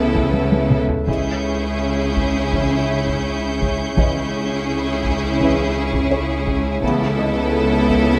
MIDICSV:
0, 0, Header, 1, 12, 480
1, 0, Start_track
1, 0, Key_signature, 4, "minor"
1, 0, Tempo, 729927
1, 708, Time_signature, 4, 2, 24, 8
1, 2139, Tempo, 715137
1, 5455, End_track
2, 0, Start_track
2, 0, Title_t, "Violin section"
2, 0, Program_c, 0, 48
2, 713, Note_on_c, 0, 85, 30
2, 716, Note_on_c, 0, 91, 27
2, 3797, Note_off_c, 0, 91, 0
2, 4272, Note_off_c, 0, 85, 0
2, 4540, Note_on_c, 0, 81, 44
2, 4544, Note_on_c, 0, 83, 45
2, 5455, Note_off_c, 0, 81, 0
2, 5455, Note_off_c, 0, 83, 0
2, 5455, End_track
3, 0, Start_track
3, 0, Title_t, "Felt piano"
3, 0, Program_c, 1, 0
3, 0, Control_c, 1, 64, 127
3, 720, Control_c, 1, 64, 0
3, 845, Control_c, 1, 64, 127
3, 2624, Note_on_c, 1, 75, 31
3, 4034, Note_off_c, 1, 75, 0
3, 4059, Note_on_c, 1, 73, 40
3, 4546, Control_c, 1, 64, 0
3, 4663, Control_c, 1, 64, 127
3, 4774, Note_on_c, 1, 75, 44
3, 5455, Note_off_c, 1, 73, 0
3, 5455, Note_off_c, 1, 75, 0
3, 5455, End_track
4, 0, Start_track
4, 0, Title_t, "Glass harmonica"
4, 0, Program_c, 2, 92
4, 0, Note_on_c, 2, 69, 32
4, 0, Note_on_c, 2, 71, 34
4, 0, Note_on_c, 2, 76, 36
4, 684, Note_off_c, 2, 69, 0
4, 684, Note_off_c, 2, 71, 0
4, 684, Note_off_c, 2, 76, 0
4, 709, Note_on_c, 2, 68, 31
4, 709, Note_on_c, 2, 73, 27
4, 709, Note_on_c, 2, 76, 28
4, 2593, Note_off_c, 2, 76, 0
4, 2615, Note_off_c, 2, 68, 0
4, 2618, Note_off_c, 2, 73, 0
4, 2624, Note_on_c, 2, 64, 32
4, 2624, Note_on_c, 2, 68, 32
4, 2626, Note_on_c, 2, 73, 31
4, 4510, Note_off_c, 2, 64, 0
4, 4510, Note_off_c, 2, 68, 0
4, 4511, Note_off_c, 2, 73, 0
4, 4545, Note_on_c, 2, 69, 43
4, 4545, Note_on_c, 2, 71, 46
4, 4547, Note_on_c, 2, 64, 43
4, 5455, Note_off_c, 2, 64, 0
4, 5455, Note_off_c, 2, 69, 0
4, 5455, Note_off_c, 2, 71, 0
4, 5455, End_track
5, 0, Start_track
5, 0, Title_t, "Violin section"
5, 0, Program_c, 3, 48
5, 0, Note_on_c, 3, 69, 47
5, 548, Note_off_c, 3, 69, 0
5, 709, Note_on_c, 3, 68, 35
5, 2592, Note_off_c, 3, 68, 0
5, 2619, Note_on_c, 3, 68, 39
5, 4508, Note_off_c, 3, 68, 0
5, 4535, Note_on_c, 3, 69, 57
5, 5455, Note_off_c, 3, 69, 0
5, 5455, End_track
6, 0, Start_track
6, 0, Title_t, "Violin section"
6, 0, Program_c, 4, 48
6, 0, Note_on_c, 4, 64, 50
6, 546, Note_off_c, 4, 64, 0
6, 708, Note_on_c, 4, 64, 38
6, 2592, Note_off_c, 4, 64, 0
6, 2628, Note_on_c, 4, 64, 40
6, 4512, Note_off_c, 4, 64, 0
6, 4538, Note_on_c, 4, 64, 59
6, 5455, Note_off_c, 4, 64, 0
6, 5455, End_track
7, 0, Start_track
7, 0, Title_t, "Viola section"
7, 0, Program_c, 5, 48
7, 0, Note_on_c, 5, 59, 52
7, 547, Note_off_c, 5, 59, 0
7, 710, Note_on_c, 5, 61, 37
7, 2593, Note_off_c, 5, 61, 0
7, 2621, Note_on_c, 5, 61, 39
7, 4509, Note_off_c, 5, 61, 0
7, 4540, Note_on_c, 5, 59, 57
7, 5455, Note_off_c, 5, 59, 0
7, 5455, End_track
8, 0, Start_track
8, 0, Title_t, "French horn section"
8, 0, Program_c, 6, 60
8, 0, Note_on_c, 6, 57, 51
8, 0, Note_on_c, 6, 59, 49
8, 463, Note_off_c, 6, 59, 0
8, 465, Note_off_c, 6, 57, 0
8, 707, Note_on_c, 6, 56, 37
8, 710, Note_on_c, 6, 61, 37
8, 879, Note_off_c, 6, 56, 0
8, 880, Note_off_c, 6, 61, 0
8, 1675, Note_on_c, 6, 56, 35
8, 1677, Note_on_c, 6, 61, 33
8, 1839, Note_off_c, 6, 56, 0
8, 1841, Note_off_c, 6, 61, 0
8, 2628, Note_on_c, 6, 56, 38
8, 2632, Note_on_c, 6, 61, 40
8, 2793, Note_off_c, 6, 56, 0
8, 2795, Note_off_c, 6, 61, 0
8, 3590, Note_on_c, 6, 61, 51
8, 3591, Note_on_c, 6, 56, 46
8, 3754, Note_off_c, 6, 61, 0
8, 3755, Note_off_c, 6, 56, 0
8, 4538, Note_on_c, 6, 57, 57
8, 4539, Note_on_c, 6, 59, 59
8, 4705, Note_off_c, 6, 57, 0
8, 4706, Note_off_c, 6, 59, 0
8, 5455, End_track
9, 0, Start_track
9, 0, Title_t, "Trombone section"
9, 0, Program_c, 7, 61
9, 0, Note_on_c, 7, 49, 48
9, 0, Note_on_c, 7, 52, 50
9, 468, Note_off_c, 7, 49, 0
9, 468, Note_off_c, 7, 52, 0
9, 708, Note_on_c, 7, 49, 38
9, 708, Note_on_c, 7, 52, 39
9, 879, Note_off_c, 7, 49, 0
9, 879, Note_off_c, 7, 52, 0
9, 1663, Note_on_c, 7, 49, 33
9, 1665, Note_on_c, 7, 52, 37
9, 1833, Note_off_c, 7, 49, 0
9, 1834, Note_off_c, 7, 52, 0
9, 2621, Note_on_c, 7, 49, 41
9, 2622, Note_on_c, 7, 52, 40
9, 2789, Note_off_c, 7, 49, 0
9, 2790, Note_off_c, 7, 52, 0
9, 3586, Note_on_c, 7, 49, 47
9, 3588, Note_on_c, 7, 52, 48
9, 3752, Note_off_c, 7, 49, 0
9, 3753, Note_off_c, 7, 52, 0
9, 4541, Note_on_c, 7, 49, 55
9, 4543, Note_on_c, 7, 52, 58
9, 4707, Note_off_c, 7, 49, 0
9, 4708, Note_off_c, 7, 52, 0
9, 5455, End_track
10, 0, Start_track
10, 0, Title_t, "Cello section"
10, 0, Program_c, 8, 48
10, 0, Note_on_c, 8, 49, 51
10, 549, Note_off_c, 8, 49, 0
10, 708, Note_on_c, 8, 49, 38
10, 2592, Note_off_c, 8, 49, 0
10, 2619, Note_on_c, 8, 49, 41
10, 4508, Note_off_c, 8, 49, 0
10, 4536, Note_on_c, 8, 49, 59
10, 5455, Note_off_c, 8, 49, 0
10, 5455, End_track
11, 0, Start_track
11, 0, Title_t, "Double bass section"
11, 0, Program_c, 10, 48
11, 0, Note_on_c, 10, 37, 49
11, 548, Note_off_c, 10, 37, 0
11, 712, Note_on_c, 10, 37, 39
11, 2594, Note_off_c, 10, 37, 0
11, 2622, Note_on_c, 10, 37, 44
11, 4509, Note_off_c, 10, 37, 0
11, 4539, Note_on_c, 10, 37, 60
11, 5455, Note_off_c, 10, 37, 0
11, 5455, End_track
12, 0, Start_track
12, 0, Title_t, "Taiko and cinematic ensemble drums"
12, 98, Note_on_c, 9, 41, 63
12, 164, Note_off_c, 9, 41, 0
12, 220, Note_on_c, 9, 48, 63
12, 286, Note_off_c, 9, 48, 0
12, 342, Note_on_c, 9, 48, 70
12, 407, Note_off_c, 9, 48, 0
12, 463, Note_on_c, 9, 47, 70
12, 529, Note_off_c, 9, 47, 0
12, 585, Note_on_c, 9, 43, 68
12, 651, Note_off_c, 9, 43, 0
12, 707, Note_on_c, 9, 41, 70
12, 772, Note_off_c, 9, 41, 0
12, 1424, Note_on_c, 9, 41, 58
12, 1490, Note_off_c, 9, 41, 0
12, 1666, Note_on_c, 9, 41, 60
12, 1732, Note_off_c, 9, 41, 0
12, 2024, Note_on_c, 9, 41, 58
12, 2090, Note_off_c, 9, 41, 0
12, 2383, Note_on_c, 9, 41, 60
12, 2450, Note_off_c, 9, 41, 0
12, 2620, Note_on_c, 9, 41, 74
12, 2687, Note_off_c, 9, 41, 0
12, 3341, Note_on_c, 9, 41, 57
12, 3408, Note_off_c, 9, 41, 0
12, 3580, Note_on_c, 9, 41, 56
12, 3647, Note_off_c, 9, 41, 0
12, 3939, Note_on_c, 9, 41, 63
12, 4006, Note_off_c, 9, 41, 0
12, 4298, Note_on_c, 9, 41, 62
12, 4365, Note_off_c, 9, 41, 0
12, 4533, Note_on_c, 9, 41, 53
12, 4600, Note_off_c, 9, 41, 0
12, 5258, Note_on_c, 9, 41, 30
12, 5325, Note_off_c, 9, 41, 0
12, 5455, End_track
0, 0, End_of_file